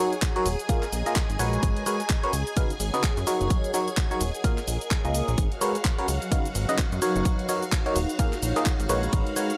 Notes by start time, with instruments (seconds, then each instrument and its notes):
Already playing: string machine G#4 G#5, ambient pad D#5 A#5
0.00 fm electric piano F#3 D#4 F#4 A#4 C#5
0.06 ambient pad G#5
0.13 closed hi-hat, shaker
0.22 kick, clap, closed hi-hat, shaker
0.36 fm electric piano F#3 D#4 F#4 A#4 C#5, closed hi-hat
0.46 analog synth bass D#1, open hi-hat, shaker
0.59 closed hi-hat, shaker
0.69 fm electric piano A#3 F4 G#4 A#4 F5, kick, closed hi-hat, shaker
0.83 clap, closed hi-hat, shaker
0.93 analog synth bass A#1, open hi-hat, shaker
1.06 fm electric piano A#3 F4 G#4 A#4 D#5, closed hi-hat, shaker
1.16 kick, clap, closed hi-hat, shaker
1.30 analog synth bass G#1, closed hi-hat, shaker
1.39 analog synth bass A#1, fm electric piano G#3 F#4 A#4 B4 C#5, open hi-hat, shaker
1.53 closed hi-hat, shaker
1.63 analog synth bass G#1, ambient pad G#4, kick, closed hi-hat, shaker
1.77 closed hi-hat
1.86 fm electric piano G#3 F#4 A#4 B4 C#5, open hi-hat, shaker
1.96 ambient pad C#5 F#5
2.00 closed hi-hat, shaker
2.10 kick, clap, closed hi-hat, shaker
2.23 fm electric piano C#4 F#4 A#4 B4 C#5, closed hi-hat
2.33 analog synth bass C#2, open hi-hat, shaker
2.47 closed hi-hat, shaker
2.57 fm electric piano C#3 D#4 F#4 B4 F5, kick, closed hi-hat, shaker
2.70 closed hi-hat, shaker
2.80 analog synth bass G#1, open hi-hat, shaker
2.94 fm electric piano C#3 D#4 F#4 B4 D#5, closed hi-hat, shaker
3.03 kick, clap, closed hi-hat, shaker
3.17 analog synth bass F#2, closed hi-hat, shaker
3.27 fm electric piano F#3 D#4 F#4 A#4 C#5, ambient pad A#4, open hi-hat, shaker
3.37 analog synth bass F#1, ambient pad D#5, closed hi-hat, shaker
3.50 kick, closed hi-hat, shaker
3.64 closed hi-hat, shaker
3.74 fm electric piano F#3 D#4 F#4 A#4 C#5, open hi-hat, shaker
3.88 closed hi-hat, shaker
3.97 kick, clap, closed hi-hat, shaker
4.11 fm electric piano F#3 D#4 F#4 A#4 C#5, closed hi-hat, shaker
4.21 analog synth bass D#1, open hi-hat, shaker
4.34 closed hi-hat, shaker
4.44 fm electric piano A#3 F4 G#4 A#4 F5, ambient pad G#4, kick, closed hi-hat, shaker
4.58 clap, closed hi-hat, shaker
4.68 analog synth bass A#1, open hi-hat, shaker
4.81 closed hi-hat, shaker
4.91 kick, clap, closed hi-hat, shaker
5.05 analog synth bass C#2, fm electric piano A#3 F4 G#4 A#4 D#5, closed hi-hat, shaker
5.14 open hi-hat, shaker
5.28 analog synth bass A#1, closed hi-hat, shaker
5.38 analog synth bass G#1, ambient pad F#3, string machine F#4 F5, kick, closed hi-hat, shaker
5.52 closed hi-hat
5.61 fm electric piano G#3 F#4 A#4 B4 C#5, open hi-hat, shaker
5.71 ambient pad B4 D#5
5.75 closed hi-hat, shaker
5.85 kick, clap, closed hi-hat, shaker
5.98 fm electric piano C#4 F#4 A#4 B4 C#5, closed hi-hat
6.08 analog synth bass C#2, open hi-hat, shaker
6.22 closed hi-hat, shaker
6.32 fm electric piano C#3 D#4 F#4 B4 F5, kick, closed hi-hat, shaker
6.45 closed hi-hat, shaker
6.55 analog synth bass G#1, open hi-hat, shaker
6.69 fm electric piano C#3 D#4 F#4 B4 D#5, closed hi-hat, shaker
6.78 kick, clap, closed hi-hat, shaker
6.92 analog synth bass F#2, closed hi-hat, shaker
7.02 fm electric piano F#3 D#4 F#4 A#4 C#5, ambient pad D#4, open hi-hat, shaker
7.16 analog synth bass F#1, closed hi-hat, shaker
7.21 ambient pad G#4
7.25 ambient pad C#5, kick, closed hi-hat, shaker
7.39 closed hi-hat
7.49 fm electric piano F#3 D#4 F#4 A#4 C#5, open hi-hat, shaker
7.63 closed hi-hat, shaker
7.72 kick, clap, closed hi-hat, shaker
7.86 fm electric piano F#3 D#4 F#4 A#4 C#5, closed hi-hat
7.96 analog synth bass D#1, open hi-hat, shaker
8.09 closed hi-hat, shaker
8.19 fm electric piano A#3 F4 G#4 A#4 F5, kick, closed hi-hat, shaker
8.33 clap, closed hi-hat, shaker
8.43 analog synth bass A#1, open hi-hat, shaker
8.56 fm electric piano A#3 F4 G#4 A#4 D#5, closed hi-hat, shaker
8.66 kick, clap, closed hi-hat, shaker
8.80 analog synth bass G#1, closed hi-hat, shaker
8.89 analog synth bass A#1, fm electric piano G#3 F#4 A#4 B4 C#5, open hi-hat, shaker
9.03 closed hi-hat, shaker
9.13 analog synth bass G#1, ambient pad C#4, kick, closed hi-hat, shaker
9.27 closed hi-hat
9.36 fm electric piano G#3 F#4 A#4 B4 C#5, open hi-hat, shaker
9.50 closed hi-hat, shaker